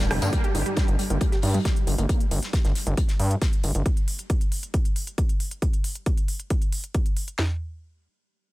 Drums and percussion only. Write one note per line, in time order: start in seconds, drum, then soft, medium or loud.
0.00 snare loud
0.00 closed hi-hat medium
0.11 cross-stick medium
0.11 open hi-hat medium
0.11 ride medium
0.22 closed hi-hat medium
0.22 ride medium
0.22 tambourine medium
0.33 kick loud
0.33 closed hi-hat medium
0.44 closed hi-hat medium
0.55 closed hi-hat medium
0.55 open hi-hat loud
0.66 closed hi-hat medium
0.77 kick loud
0.77 snare loud
0.77 closed hi-hat medium
0.88 closed hi-hat medium
0.99 closed hi-hat medium
0.99 open hi-hat medium
1.10 closed hi-hat medium
1.21 kick loud
1.21 closed hi-hat medium
1.21 closed hi-hat loud
1.32 snare soft
1.32 closed hi-hat medium
1.42 open hi-hat medium
1.42 open hi-hat loud
1.54 closed hi-hat medium
1.65 kick loud
1.65 snare loud
1.65 closed hi-hat loud
1.76 closed hi-hat medium
1.87 closed hi-hat medium
1.87 open hi-hat medium
1.98 closed hi-hat soft
1.98 closed hi-hat medium
2.09 kick loud
2.09 closed hi-hat medium
2.20 closed hi-hat medium
2.31 closed hi-hat medium
2.31 open hi-hat loud
2.43 snare medium
2.43 closed hi-hat medium
2.53 kick loud
2.53 snare loud
2.53 closed hi-hat loud
2.53 closed hi-hat medium
2.64 snare soft
2.64 closed hi-hat medium
2.75 snare soft
2.75 closed hi-hat medium
2.75 open hi-hat medium
2.87 closed hi-hat medium
2.97 kick loud
2.97 closed hi-hat loud
2.97 closed hi-hat medium
3.08 snare medium
3.08 closed hi-hat medium
3.20 open hi-hat loud
3.31 closed hi-hat medium
3.42 kick loud
3.42 snare loud
3.42 closed hi-hat loud
3.42 closed hi-hat medium
3.53 closed hi-hat medium
3.63 closed hi-hat medium
3.63 open hi-hat medium
3.75 closed hi-hat medium
3.86 kick loud
3.86 closed hi-hat medium
3.97 closed hi-hat medium
4.08 open hi-hat loud
4.19 closed hi-hat medium
4.30 kick loud
4.30 closed hi-hat medium
4.41 closed hi-hat medium
4.52 open hi-hat medium
4.63 closed hi-hat medium
4.74 kick loud
4.74 closed hi-hat medium
4.85 closed hi-hat medium
4.96 open hi-hat loud
5.07 closed hi-hat medium
5.18 kick loud
5.18 closed hi-hat loud
5.29 closed hi-hat soft
5.40 open hi-hat medium
5.51 closed hi-hat medium
5.62 kick loud
5.62 closed hi-hat medium
5.73 closed hi-hat soft
5.84 open hi-hat loud
5.95 closed hi-hat soft
6.06 kick loud
6.06 closed hi-hat medium
6.17 closed hi-hat soft
6.28 open hi-hat medium
6.40 closed hi-hat soft
6.50 kick loud
6.50 closed hi-hat medium
6.62 closed hi-hat soft
6.72 open hi-hat loud
6.84 closed hi-hat soft
6.94 kick loud
6.94 closed hi-hat medium
7.06 closed hi-hat soft
7.17 open hi-hat medium
7.28 closed hi-hat soft
7.39 snare loud
7.39 floor tom loud